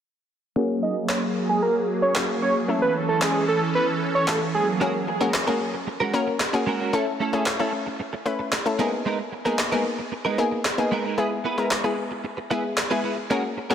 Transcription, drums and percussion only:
1.09 snare medium
1.09 clap loud
2.15 snare medium
2.15 clap loud
3.21 snare medium
3.21 clap loud
4.28 snare medium
4.28 clap loud
5.34 snare medium
5.34 clap loud
6.40 snare medium
6.40 clap loud
7.46 snare medium
7.46 clap loud
8.52 snare medium
8.52 clap loud
9.59 snare medium
9.59 clap loud
10.65 snare medium
10.65 clap loud
11.71 snare medium
11.71 clap loud
12.77 snare medium
12.77 clap loud

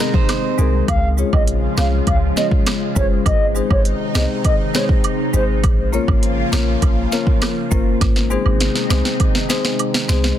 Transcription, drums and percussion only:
0.00 cross-stick medium
0.14 kick medium
0.29 cross-stick loud
0.29 snare medium
0.29 closed hi-hat medium
0.29 high woodblock medium
0.59 cabasa medium
0.88 kick loud
0.88 closed hi-hat medium
0.88 high woodblock medium
1.18 cabasa medium
1.33 kick loud
1.33 high woodblock medium
1.47 closed hi-hat medium
1.77 cross-stick loud
1.77 snare loud
1.77 cabasa medium
1.77 high woodblock medium
2.07 kick medium
2.07 closed hi-hat medium
2.07 high woodblock medium
2.37 snare medium
2.37 cabasa medium
2.51 kick medium
2.66 cross-stick loud
2.66 snare loud
2.66 closed hi-hat medium
2.66 high woodblock medium
2.96 kick loud
2.96 cabasa medium
3.26 kick loud
3.26 closed hi-hat medium
3.26 high woodblock medium
3.55 cabasa medium
3.70 kick loud
3.70 high woodblock medium
3.85 closed hi-hat medium
4.15 cross-stick loud
4.15 snare loud
4.15 cabasa medium
4.15 high woodblock medium
4.45 kick loud
4.45 closed hi-hat medium
4.45 high woodblock medium
4.75 cross-stick medium
4.75 snare loud
4.75 cabasa medium
4.89 kick loud
5.04 closed hi-hat medium
5.04 high woodblock medium
5.34 cabasa medium
5.64 kick loud
5.64 closed hi-hat medium
5.64 high woodblock medium
5.93 cabasa medium
6.08 kick loud
6.08 high woodblock medium
6.23 closed hi-hat medium
6.53 cross-stick loud
6.53 snare loud
6.53 cabasa medium
6.53 high woodblock medium
6.82 kick medium
6.82 closed hi-hat medium
6.82 high woodblock medium
7.12 snare medium
7.12 cabasa medium
7.27 kick loud
7.42 cross-stick loud
7.42 snare loud
7.42 closed hi-hat medium
7.42 high woodblock medium
7.71 kick loud
7.71 cabasa medium
8.01 kick loud
8.01 snare medium
8.01 closed hi-hat medium
8.01 high woodblock medium
8.16 snare medium
8.31 cabasa medium
8.46 high woodblock medium
8.60 snare medium
8.60 closed hi-hat medium
8.76 snare medium
8.90 snare medium
8.90 cabasa medium
8.90 high woodblock medium
9.05 snare medium
9.20 kick loud
9.20 closed hi-hat medium
9.20 high woodblock medium
9.35 snare medium
9.50 snare loud
9.50 cabasa medium
9.65 snare medium
9.79 closed hi-hat medium
9.79 high woodblock medium
9.94 snare loud
10.09 snare loud
10.09 cabasa medium
10.24 snare medium

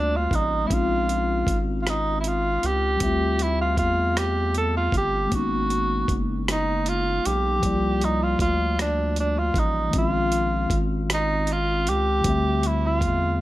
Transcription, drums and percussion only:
0.31 kick medium
0.31 closed hi-hat soft
0.70 kick medium
0.70 closed hi-hat medium
1.09 closed hi-hat soft
1.47 kick medium
1.47 closed hi-hat soft
1.87 cross-stick medium
1.87 closed hi-hat medium
2.24 closed hi-hat soft
2.63 closed hi-hat soft
3.00 kick medium
3.00 closed hi-hat medium
3.39 closed hi-hat soft
3.77 kick medium
3.77 closed hi-hat soft
4.17 cross-stick medium
4.17 closed hi-hat medium
4.54 closed hi-hat soft
4.92 kick medium
4.92 closed hi-hat soft
5.32 kick medium
5.32 closed hi-hat medium
5.70 closed hi-hat soft
6.08 kick medium
6.08 closed hi-hat soft
6.48 cross-stick medium
6.48 closed hi-hat medium
6.86 closed hi-hat soft
7.25 closed hi-hat soft
7.63 kick medium
7.63 closed hi-hat medium
8.01 closed hi-hat soft
8.39 kick medium
8.39 closed hi-hat soft
8.79 cross-stick medium
8.79 closed hi-hat medium
9.16 closed hi-hat soft
9.54 kick medium
9.54 closed hi-hat soft
9.93 kick medium
9.93 closed hi-hat medium
10.32 closed hi-hat soft
10.70 kick medium
10.70 closed hi-hat medium
11.10 cross-stick medium
11.10 closed hi-hat medium
11.47 closed hi-hat soft
11.87 closed hi-hat soft
12.24 kick medium
12.24 closed hi-hat medium
12.63 closed hi-hat soft
13.01 kick medium
13.01 closed hi-hat soft

